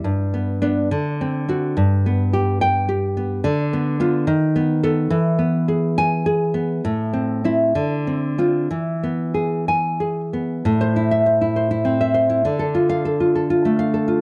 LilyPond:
\new Staff \with { instrumentName = "Nylon-string guitar" } { \time 6/8 \key g \major \tempo 4. = 68 << { r4 d'8 r4 fis'8 | r4. g''8. r8. | \key a \minor r4 f'8 r4 a'8 | r4. gis''8. r8. |
r4 e'8 r4 f'8 | r4. gis''8. r8. | r8. e''8 r4. r16 | r8. f''8 r4. r16 | } \\ { g,8 b8 b8 d8 c'8 c'8 | g,8 b8 g'4 g'8 b8 | d8 b8 b8 dis8 b8 b8 | e8 b8 gis'4 gis'8 b8 |
a,8 c'8 c'8 d8 c'8 c'8 | e8 b8 gis'4 gis'8 b8 | a,16 c''16 e'8 c''16 e'16 c''16 e'16 c'16 e''16 c''16 e'16 | d16 a'16 f'8 a'16 f'16 a'16 f'16 a16 f''16 a'16 f'16 | } >> }